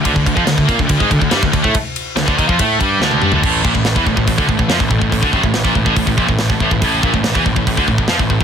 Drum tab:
CC |----------------|----------------|x---------------|----------------|
RD |x-x-x-x-x-x-x-x-|x-x-x-x-x-x-----|----------------|----------------|
HH |----------------|----------------|----o---o---o---|o---o---o---o---|
SD |----o-------o---|----o-------o---|----o-------o---|----o-------o---|
T1 |----------------|-------------o--|----------------|----------------|
T2 |----------------|--------------o-|----------------|----------------|
FT |----------------|---------------o|----------------|----------------|
BD |oooo-ooooooo-ooo|o----oooo-o-----|o-oo-ooooooo-ooo|oooo-ooooooo-ooo|

CC |----------------|
RD |----------------|
HH |o---o---o---o---|
SD |----o-------o---|
T1 |----------------|
T2 |----------------|
FT |----------------|
BD |o-oo-ooooooo-ooo|